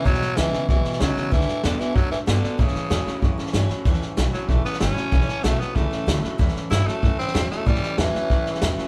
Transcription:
<<
  \new Staff \with { instrumentName = "Steel-string acoustic guitar" } { \time 4/4 \key a \mixolydian \tempo 4 = 189 <e, b, e gis b e'>8 <e gis b e'>8 <e, b, e gis b e'>8 <e gis b e'>8 <e gis b e'>8 <e gis b e'>8 <e, b, e gis b e'>8 <e gis b e'>8 | <d a d' fis'>8 <a d' fis'>8 <d a d' fis'>8 <a d' fis'>8 <d a d' fis'>8 <d' fis'>8 <d a d' fis'>8 <a d' fis'>8 | <a, e a cis' e'>8 <a cis' e'>8 <a, e a cis' e'>8 <a cis' e'>8 <e a cis' e'>8 <a cis' e'>8 <a, e a cis' e'>8 <a cis' e'>8 | <a, e a cis' e'>8 <a cis' e'>8 <a, e a cis' e'>8 <a cis' e'>8 <e a cis' e'>8 <a cis' e'>8 <a, e a cis' e'>8 <a cis' e'>8 |
<a, e a cis' e'>8 <a cis' e'>8 <a, e a cis' e'>8 <a cis' e'>8 <e a cis' e'>8 <a cis' e'>8 <a, e a cis' e'>8 <a cis' e'>8 | <a, e a cis' e'>8 <a cis' e'>8 <a, e a cis' e'>8 <a cis' e'>8 <e a cis' e'>8 <a cis' e'>8 <a, e a cis' e'>8 <a cis' e'>8 | <a, e a cis' e'>8 <a cis' e'>8 <a, e a cis' e'>8 <a cis' e'>8 <e a cis' e'>8 <a cis' e'>8 <a, e a cis' e'>8 <a cis' e'>8 | }
  \new Staff \with { instrumentName = "Tenor saxophone" } { \clef bass \time 4/4 \key a \mixolydian fis4 e4 e4 fis4 | e4 d8 e8 fis8 e8 d4 | cis2. r4 | r4. fis8 a8 b8 cis'4~ |
cis'4 a8 b8 a2 | r4 e'8 a4 c'4 a8 | g4 e2. | }
  \new Staff \with { instrumentName = "Clean electric guitar" } { \clef bass \time 4/4 \key a \mixolydian <e, b,>4 <e, cis>8 <e, cis>8 <e, b,>4 <e, cis>8 <e, cis>8 | <d a>4 <d b>8 <d b>8 <d a>4 <d b>8 <d b>8 | <a, e>4 <a, fis>8 <a, fis>8 <a, e>4 <a, fis>8 <a, fis>8 | <a, e>4 <a, fis>8 <a, fis>8 <a, e>4 <a, fis>8 <a, fis>8 |
<a, e>4 <a, fis>8 <a, fis>8 <a, e>4 <a, fis>8 <a, fis>8 | <a, e>4 <a, fis>8 <a, fis>8 <a, e>4 <a, fis>8 <a, fis>8 | <a, e>4 <a, fis>8 <a, fis>8 <a, e>4 <a, fis>8 <a, fis>8 | }
  \new Staff \with { instrumentName = "Upright bass" } { \clef bass \time 4/4 \key a \mixolydian e,8 r8 cis,8 r8 b,,8 r8 cis,8 r8 | d,8 r8 e,8 r8 fis,8 r8 g,8 r8 | a,8 r8 e,8 r8 fis,8 r8 g,8 r8 | e,8 r8 b,,8 r8 a,,8 r8 g,,8 r8 |
a,,8 r8 b,,8 r8 cis,8 r8 d,8 r8 | e,8 r8 g,8 r8 fis,8 r8 e,8 r8 | a,8 r8 e,8 r8 fis,8 r8 e,8 r8 | }
  \new DrumStaff \with { instrumentName = "Drums" } \drummode { \time 4/4 <bd sn>16 sn16 sn8 <hhp sn>8 sn8 <bd sn>8 sn16 sn16 <hhp sn>8 sn8 | <bd sn>16 sn16 sn8 <hhp sn>8 sn8 <bd sn>8 sn8 <hhp sn>8 sn8 | <bd sn>16 sn16 sn8 <hhp sn>8 sn8 <bd sn>8 sn16 sn16 <hhp sn>8 sn8 | <bd sn>16 sn16 sn8 <hhp sn>8 sn8 <bd sn>8 sn16 sn16 <hhp sn>8 sn8 |
<bd sn>16 sn16 sn8 <hhp sn>8 sn8 <bd sn>8 sn8 <hhp sn>8 sn8 | <bd sn>16 sn16 sn8 <hhp sn>8 sn8 <bd sn>8 sn16 sn16 <hhp sn>8 sn8 | <bd sn>16 sn16 sn8 <hhp sn>8 sn8 <bd sn>8 sn16 sn16 <hhp sn>8 sn8 | }
>>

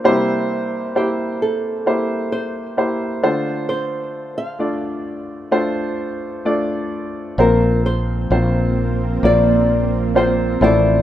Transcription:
<<
  \new Staff \with { instrumentName = "Nylon-string guitar" } { \time 4/4 \key bes \lydian \tempo 4 = 65 r4 g'8 a'4 c''4. | c''8. f''4. r4. r16 | bes'8 c''4. d''4 c''8 d''8 | }
  \new Staff \with { instrumentName = "Grand piano" } { \time 4/4 \key bes \lydian <bes e' g' c''>4 <bes e' g' c''>4 <bes e' g' c''>4 <bes e' g' c''>8 <a d' f' c''>8~ | <a d' f' c''>4 <a d' f' d''>4 <a d' f' c''>4 <a d' f' d''>4 | <bes c' f' c''>4 <bes c' f' c''>4 <bes c' f' d''>4 <bes c' f' c''>8 <a e' f' c''>8 | }
  \new Staff \with { instrumentName = "Grand piano" } { \clef bass \time 4/4 \key bes \lydian <c g>2.~ <c g>8 d8~ | d2.~ d8 r8 | <bes, f>4. r2 a,8 | }
  \new Staff \with { instrumentName = "Ambient pad" } { \time 4/4 \key bes \lydian r1 | r1 | <f bes c'>2.~ <f bes c'>8 <f a e''>8 | }
  \new Staff \with { instrumentName = "Fretless electric bass" } { \clef bass \time 4/4 \key bes \lydian r1 | r1 | bes,,4 bes,,4 bes,,4. a,,8 | }
>>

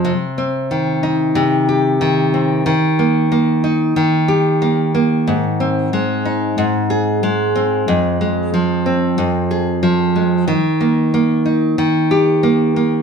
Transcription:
\new Staff \with { instrumentName = "Nylon-string guitar" } { \time 4/4 \key ees \major \tempo 4 = 92 c8 c'8 ees8 ees'8 c8 g'8 ees8 c'8 | ees8 bes8 bes8 ees'8 ees8 g'8 bes8 bes8 | aes,8 c'8 aes8 ees'8 aes,8 aes'8 aes8 c'8 | f,8 aes8 f8 c'8 f,8 aes'8 f8 aes8 |
ees8 bes8 bes8 ees'8 ees8 g'8 bes8 bes8 | }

